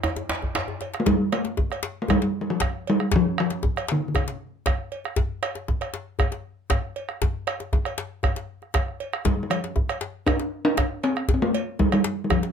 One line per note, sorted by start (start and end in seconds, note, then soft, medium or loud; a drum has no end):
0.03 bombo rim medium
0.03 cowbell medium
0.03 djembe tone loud
0.16 djembe slap medium
0.16 djembe tone medium
0.29 djembe slap medium
0.42 bombo low medium
0.42 djembe bass soft
0.55 bombo rim medium
0.55 cowbell soft
0.55 djembe slap medium
0.55 djembe bass soft
0.68 djembe bass soft
0.81 bombo rim soft
0.81 cowbell soft
0.81 djembe slap soft
0.94 bombo rim medium
0.94 djembe slap medium
1.00 1.08 A3 medium
1.06 1.34 G3 loud
1.06 bombo low medium
1.06 djembe slap medium
1.06 djembe bass medium
1.32 2.02 A3 loud
1.32 bombo rim medium
1.32 cowbell medium
1.45 djembe slap medium
1.57 bombo low loud
1.57 djembe slap soft
1.57 djembe tone medium
1.70 bombo rim medium
1.70 cowbell medium
1.70 djembe slap soft
1.83 djembe slap medium
2.02 2.12 A3 medium
2.08 2.41 G3 loud
2.08 bombo rim loud
2.08 bombo low medium
2.08 cowbell medium
2.08 djembe bass medium
2.22 djembe slap medium
2.41 2.52 G3 medium
2.50 2.91 F3 medium
2.60 bombo rim loud
2.60 bombo low loud
2.60 cowbell soft
2.60 djembe slap medium
2.60 djembe tone medium
2.87 3.17 G3 loud
2.87 cowbell soft
2.99 bombo rim medium
2.99 djembe slap soft
3.12 bombo low loud
3.12 djembe slap medium
3.12 djembe bass medium
3.16 3.39 F3 loud
3.38 3.93 F3 medium
3.38 bombo rim loud
3.50 djembe slap medium
3.63 bombo low loud
3.63 djembe slap soft
3.63 djembe tone medium
3.76 bombo rim medium
3.76 cowbell medium
3.76 djembe slap soft
3.88 4.08 D3 medium
3.88 djembe slap medium
4.08 4.17 D3 medium
4.15 4.66 C3 medium
4.15 bombo rim loud
4.15 bombo low loud
4.15 cowbell medium
4.15 djembe bass medium
4.28 djembe slap medium
4.66 bombo rim loud
4.66 bombo low loud
4.66 cowbell medium
4.66 djembe slap medium
4.66 djembe tone medium
4.92 cowbell soft
5.04 bombo rim medium
5.04 djembe slap soft
5.16 bombo low medium
5.16 djembe slap medium
5.16 djembe bass medium
5.43 bombo rim loud
5.43 cowbell medium
5.55 djembe slap medium
5.68 bombo low loud
5.68 djembe slap soft
5.68 djembe tone medium
5.81 bombo rim medium
5.81 cowbell medium
5.94 djembe slap medium
6.19 bombo rim loud
6.19 bombo low loud
6.19 cowbell soft
6.19 djembe bass medium
6.32 djembe slap medium
6.70 bombo rim medium
6.70 bombo low loud
6.70 cowbell soft
6.70 djembe slap medium
6.70 djembe tone medium
6.96 cowbell soft
7.09 bombo rim medium
7.09 djembe slap soft
7.22 bombo rim soft
7.22 bombo low loud
7.22 djembe slap medium
7.22 djembe bass medium
7.47 bombo rim loud
7.47 cowbell medium
7.47 djembe slap soft
7.60 djembe slap medium
7.73 bombo low loud
7.73 djembe tone medium
7.85 bombo rim medium
7.85 cowbell soft
7.85 djembe slap soft
7.98 bombo rim soft
7.98 djembe slap medium
8.23 bombo rim loud
8.23 bombo low loud
8.23 cowbell medium
8.23 djembe slap soft
8.23 djembe bass medium
8.36 bombo rim soft
8.36 djembe slap medium
8.62 bombo rim soft
8.62 djembe slap soft
8.74 bombo rim loud
8.74 bombo low loud
8.74 cowbell soft
8.74 djembe slap medium
8.74 djembe tone medium
8.88 bombo rim soft
9.00 cowbell soft
9.13 bombo rim medium
9.13 djembe slap soft
9.25 9.43 G3 loud
9.25 bombo low loud
9.25 djembe slap medium
9.25 djembe bass medium
9.43 9.52 G3 medium
9.50 10.28 F3 medium
9.50 bombo rim loud
9.50 cowbell medium
9.64 djembe slap medium
9.76 bombo low loud
9.76 djembe slap soft
9.76 djembe tone medium
9.89 bombo rim medium
9.89 cowbell medium
9.89 djembe slap soft
10.01 djembe slap medium
10.26 10.64 D4 loud
10.26 bombo rim loud
10.26 bombo low loud
10.26 cowbell medium
10.26 djembe bass medium
10.40 djembe slap medium
10.65 11.05 D4 medium
10.77 bombo rim loud
10.77 bombo low loud
10.77 cowbell medium
10.77 djembe slap medium
10.77 djembe tone medium
11.03 11.34 C4 loud
11.03 cowbell soft
11.16 bombo rim medium
11.16 djembe slap soft
11.28 bombo low loud
11.28 djembe slap medium
11.28 djembe bass medium
11.34 11.44 C4 medium
11.42 11.81 A3 medium
11.54 cowbell medium
11.79 11.93 G3 medium
11.79 bombo low loud
11.79 djembe slap soft
11.79 djembe tone medium
11.92 12.24 G3 medium
11.92 bombo rim medium
11.92 cowbell medium
11.92 djembe slap soft
12.04 djembe slap medium
12.24 12.33 G3 medium
12.30 12.52 F3 medium
12.30 bombo rim loud
12.30 bombo low loud
12.30 cowbell medium
12.30 djembe bass medium
12.43 djembe slap medium